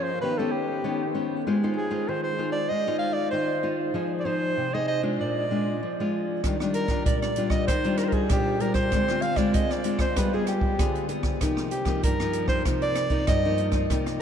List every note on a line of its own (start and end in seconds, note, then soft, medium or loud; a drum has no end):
0.00 0.19 F3 medium
0.00 0.11 C#4 medium
0.00 0.11 G#4 medium
0.00 0.11 C5 medium
0.00 0.21 C5 medium
0.21 0.82 D#3 medium
0.21 0.32 B3 soft
0.21 0.32 C#4 soft
0.21 0.32 G4 medium
0.21 0.40 B4 medium
0.38 0.80 B3 medium
0.38 0.81 C#4 medium
0.38 0.81 G4 medium
0.38 0.53 A4 medium
0.52 1.15 G4 medium
0.84 1.44 D#3 medium
0.84 1.03 B3 medium
0.84 1.03 C#4 medium
0.84 1.03 G4 medium
1.14 1.44 B3 medium
1.14 1.44 C#4 medium
1.14 1.44 G4 medium
1.47 2.06 G#3 medium
1.47 1.56 D#4 medium
1.47 1.56 F4 medium
1.47 1.57 C5 medium
1.63 1.89 D#4 medium
1.63 1.89 F4 medium
1.63 1.89 C5 medium
1.77 2.10 G#4 medium
1.90 2.34 D#4 medium
1.90 2.34 F4 medium
1.90 2.34 C5 medium
2.09 2.68 D#3 medium
2.09 2.23 C5 medium
2.23 2.51 C5 medium
2.38 2.68 D#4 medium
2.38 2.69 F4 medium
2.38 2.69 C5 medium
2.52 2.71 D5 medium
2.69 3.30 G#3 medium
2.69 2.98 D#5 medium
2.87 3.29 D#4 medium
2.87 3.29 F4 medium
2.87 3.29 C5 medium
2.99 3.15 F5 medium
3.13 3.30 D5 medium
3.31 3.92 D#3 medium
3.31 3.59 D#4 soft
3.31 3.59 F4 soft
3.31 3.75 C5 medium
3.31 3.59 C5 medium
3.63 3.92 D#4 medium
3.63 3.93 F4 medium
3.63 3.93 C5 medium
3.94 4.54 F3 medium
3.94 4.21 D#4 medium
3.94 4.21 G#4 medium
3.94 4.21 C5 medium
4.20 4.27 D5 medium
4.25 4.67 D#4 medium
4.25 4.68 G#4 medium
4.25 4.75 C5 medium
4.25 4.68 C5 medium
4.57 5.17 C3 medium
4.74 5.00 D#4 medium
4.74 5.00 G#4 medium
4.74 5.00 C5 medium
4.74 4.88 D#5 medium
4.88 5.02 D#5 medium
5.02 5.45 G#3 medium
5.02 5.45 D4 medium
5.02 5.46 F4 medium
5.21 5.79 A#2 medium
5.21 6.09 D5 medium
5.51 5.80 G#3 medium
5.51 5.80 D4 medium
5.51 5.81 F4 medium
5.83 6.41 F3 medium
6.00 6.40 G#3 medium
6.00 6.40 D4 medium
6.00 6.41 F4 medium
6.44 7.04 D#3 medium
6.44 6.55 G3 medium
6.44 6.56 D4 soft
6.44 6.56 F4 soft
6.44 kick medium
6.44 cross-stick medium
6.44 closed hi-hat medium
6.60 6.87 G3 medium
6.60 6.87 D4 medium
6.60 6.87 F4 medium
6.60 cross-stick medium
6.74 7.04 A#4 medium
6.74 closed hi-hat soft
6.88 7.32 G3 medium
6.88 7.32 D4 medium
6.88 7.32 F4 medium
6.88 kick medium
6.88 cross-stick medium
6.88 closed hi-hat soft
7.06 7.66 A#2 medium
7.06 7.21 D5 medium
7.06 kick medium
7.06 closed hi-hat medium
7.22 7.52 D5 medium
7.22 cross-stick medium
7.22 closed hi-hat soft
7.36 7.66 G3 medium
7.36 7.67 D4 medium
7.36 7.67 F4 medium
7.36 closed hi-hat soft
7.50 7.67 D#5 medium
7.50 kick medium
7.50 cross-stick medium
7.68 8.28 D#3 medium
7.68 7.99 C5 medium
7.68 kick medium
7.68 cross-stick medium
7.68 closed hi-hat medium
7.84 8.26 G3 medium
7.84 8.26 D4 medium
7.84 8.26 F4 medium
7.84 closed hi-hat soft
7.98 8.06 A#4 medium
7.98 cross-stick medium
7.98 closed hi-hat soft
8.04 8.10 C5 medium
8.09 8.15 A#4 medium
8.09 kick medium
8.09 closed hi-hat soft
8.13 8.30 G#4 medium
8.30 8.90 A#2 medium
8.30 8.57 G3 medium
8.30 8.57 D4 soft
8.30 8.57 F4 medium
8.30 8.62 G4 medium
8.30 kick medium
8.30 cross-stick medium
8.30 closed hi-hat medium
8.60 8.90 G3 soft
8.60 8.90 D4 medium
8.60 8.90 F4 medium
8.60 8.74 A#4 medium
8.60 closed hi-hat soft
8.74 9.24 C5 medium
8.74 kick medium
8.74 cross-stick medium
8.74 closed hi-hat soft
8.92 9.52 D3 medium
8.92 9.03 G#3 medium
8.92 9.03 C4 soft
8.92 9.03 F4 medium
8.92 kick medium
8.92 cross-stick medium
8.92 closed hi-hat medium
9.08 9.35 G#3 medium
9.08 9.36 C4 medium
9.08 9.36 F4 medium
9.08 cross-stick medium
9.08 closed hi-hat soft
9.22 9.38 F5 loud
9.22 closed hi-hat soft
9.36 9.80 G#3 medium
9.36 9.80 C4 medium
9.36 9.81 F4 medium
9.36 9.56 D5 medium
9.36 kick medium
9.36 cross-stick medium
9.36 closed hi-hat soft
9.54 10.14 D3 medium
9.54 9.73 D#5 medium
9.54 kick medium
9.54 closed hi-hat medium
9.71 10.00 D5 medium
9.71 cross-stick medium
9.71 closed hi-hat soft
9.84 10.05 G#3 soft
9.84 10.06 C4 medium
9.84 10.06 F4 medium
9.84 closed hi-hat medium
9.99 10.18 C5 medium
9.99 kick medium
9.99 cross-stick medium
9.99 closed hi-hat soft
10.16 10.76 G3 medium
10.16 10.28 B3 soft
10.16 10.28 F4 soft
10.16 10.28 G#4 medium
10.16 10.32 B4 medium
10.16 kick medium
10.16 cross-stick medium
10.16 closed hi-hat medium
10.33 10.75 B3 medium
10.33 10.75 F4 medium
10.33 10.75 G#4 medium
10.33 10.48 G#4 medium
10.47 11.07 G4 medium
10.47 cross-stick medium
10.47 closed hi-hat soft
10.61 kick medium
10.79 11.38 D3 medium
10.79 11.05 B3 medium
10.79 11.05 F4 medium
10.79 11.06 G#4 medium
10.79 kick medium
10.79 cross-stick medium
10.79 closed hi-hat medium
10.95 closed hi-hat soft
11.09 11.38 B3 soft
11.09 11.38 F4 soft
11.09 11.39 G#4 medium
11.09 closed hi-hat soft
11.23 kick medium
11.23 cross-stick medium
11.23 closed hi-hat soft
11.41 12.01 C3 medium
11.41 11.71 F3 medium
11.41 11.71 A#3 medium
11.41 11.71 D#4 medium
11.41 kick medium
11.41 cross-stick medium
11.41 closed hi-hat medium
11.57 cross-stick medium
11.71 12.01 G4 medium
11.71 closed hi-hat soft
11.85 12.13 F3 medium
11.85 12.14 A#3 medium
11.85 12.14 D#4 medium
11.85 kick medium
11.85 cross-stick medium
11.85 closed hi-hat soft
12.03 12.63 G2 medium
12.03 12.47 A#4 medium
12.03 kick medium
12.03 closed hi-hat medium
12.20 12.62 F3 medium
12.20 12.62 A#3 medium
12.20 12.62 D#4 medium
12.20 cross-stick medium
12.20 closed hi-hat soft
12.33 closed hi-hat soft
12.48 12.63 C5 medium
12.48 kick medium
12.48 cross-stick medium
12.65 13.25 C3 medium
12.65 13.08 F3 soft
12.65 13.08 A#3 soft
12.65 13.08 D#4 soft
12.65 kick medium
12.65 cross-stick medium
12.65 closed hi-hat medium
12.82 13.25 D5 loud
12.82 closed hi-hat soft
12.95 cross-stick medium
12.95 closed hi-hat soft
13.10 13.38 F3 medium
13.10 13.38 A#3 medium
13.10 13.38 D#4 medium
13.10 kick medium
13.10 closed hi-hat soft
13.27 13.87 G2 medium
13.27 13.72 D#5 medium
13.27 kick medium
13.27 cross-stick medium
13.27 closed hi-hat medium
13.45 13.71 F3 medium
13.45 13.71 A#3 medium
13.45 13.71 D#4 medium
13.58 closed hi-hat soft
13.72 13.85 F3 medium
13.72 13.85 A#3 medium
13.72 13.85 D#4 medium
13.72 kick medium
13.72 cross-stick medium
13.72 closed hi-hat soft
13.90 14.22 C3 medium
13.90 14.22 F3 medium
13.90 14.22 A#3 medium
13.90 14.22 D#4 medium
13.90 kick medium
13.90 cross-stick medium
13.90 closed hi-hat medium
14.06 cross-stick medium
14.06 closed hi-hat soft